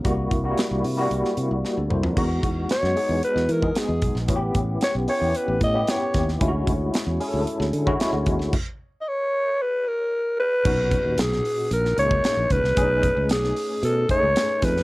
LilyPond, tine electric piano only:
\new Staff \with { instrumentName = "Tine electric piano" } { \time 4/4 \key b \major \tempo 4 = 113 << { r2. r16 <c' a'>16 <e' c''>16 <d' bes'>16~ | <d' bes'>16 r2. r8. | r1 | r1 |
r1 | r1 | r1 | } \\ { <g bes e' fis'>8. <g bes d' e' fis'>4 <g bes e' fis'>4.~ <g bes e' fis'>16 r8 | <gis b dis' fis'>4. <gis b dis' gis'>4~ <gis b dis' gis'>16 <gis b dis' gis'>4~ <gis b dis' gis'>16 | <b cis' e' fis' g'>4. <b cis' e' g'>4~ <b cis' e' g'>16 <b cis' e' g'>4~ <b cis' e' g'>16 | <gis cis' e' eis' fis'>4. <cis' e' gis' a'>4~ <cis' e' gis' a'>16 <gis cis' e' fis'>4~ <gis cis' e' fis'>16 |
r1 | <ais, cis' dis' fis'>4.~ <ais, cis' dis' fis'>16 r8. <ais cis' dis' gis'>4. | <a cis' d' dis' gis'>4.~ <a cis' d' dis' gis'>16 r8. <a cis' dis' gis'>4. | } >> }